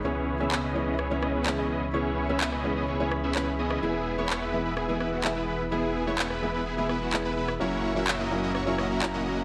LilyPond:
<<
  \new Staff \with { instrumentName = "Analog synth pad" } { \time 4/4 \key cis \dorian \tempo 4 = 127 << { <gis' cis'' e'' b''>1~ | <gis' cis'' e'' b''>1~ | <gis' cis'' e'' b''>1~ | <gis' cis'' e'' b''>1 |
<fis' e'' ais''>1 | } \\ { r1 | r1 | b'1~ | b'1 |
cis''1 | } >> }
  \new Staff \with { instrumentName = "Supersaw synth" } { \time 4/4 \key cis \dorian <b cis' e' gis' cis''>8. <b cis' e' gis' e''>8 <b cis' e' gis' dis''>8 <b cis' e' gis' dis''>16 <b cis' e' gis' cis''>16 <b cis' e' gis' cis''>16 <b cis' e' gis' dis''>16 <b cis' e' gis' b'>16 r16 <b cis' e' gis' dis''>16 <b cis' e' gis' dis''>16 r16 | <b cis' e' gis' cis''>8. <b cis' e' gis' e''>8 <b cis' e' gis' dis''>8 <b cis' e' gis' dis''>16 <b cis' e' gis' cis''>16 <b cis' e' gis' cis''>16 r16 <b cis' e' gis' e''>16 <b cis' e' gis' b'>16 r16 <b cis' e' gis' dis''>8 | <b e' gis'>8. <b e' cis''>8 <b e' b'>8 <b e' b'>16 <b e' gis'>16 <b e' gis'>16 <b e' b'>16 <b e' fis'>16 r16 <b e' b'>16 <b e' b'>16 r16 | <b e' gis'>8. <b e' cis''>8 <b e' b'>8 <b e' b'>16 <b e' gis'>16 <b e' gis'>16 <b e' b'>16 <b e' fis'>16 r16 <b e' b'>16 <b e' b'>16 r16 |
<ais cis' e' fis' cis''>8. <ais cis' e' fis' e''>8 <ais cis' e' fis' dis''>8 <ais cis' e' fis' dis''>16 <ais cis' e' fis' cis''>16 <ais cis' e' fis' cis''>16 <ais cis' e' fis' dis''>16 <ais cis' e' fis' ais'>16 r16 <ais cis' e' fis' dis''>16 <ais cis' e' fis' dis''>16 r16 | }
  \new Staff \with { instrumentName = "Felt piano" } { \time 4/4 \key cis \dorian <e gis b cis'>8. <e gis b cis'>16 r8 <e gis b cis'>8 r16 <e gis b cis'>8. <e gis b cis'>4 | <e gis b cis'>8. <e gis b cis'>16 r8 <e gis b cis'>8 r16 <e gis b cis'>8. <e gis b cis'>4 | <e gis b e'>8. <e gis b e'>16 r8 <e gis b e'>8 r16 <e gis b e'>8. <e gis b e'>4 | <e gis b e'>8. <e gis b e'>16 r8 <e gis b e'>8 r16 <e gis b e'>8. <e gis b e'>4 |
<fis ais cis' e'>8. <fis ais cis' e'>16 r8 <fis ais cis' e'>8 r16 <fis ais cis' e'>8. <fis ais cis' e'>4 | }
  \new Staff \with { instrumentName = "Detuned saw bass" } { \clef bass \time 4/4 \key cis \dorian cis,1~ | cis,1 | e,,1~ | e,,1 |
fis,,1 | }
  \new DrumStaff \with { instrumentName = "Drums" } \drummode { \time 4/4 r4 hc4 ss8 ss8 hc4 | r4 hc16 ss8. r8 ss8 hc8. ss16 | r4 hc4 ss8 ss8 hc4 | r4 hc16 ss8. r8 ss8 hc8. ss16 |
r4 hc4 ss8 ss8 hc4 | }
>>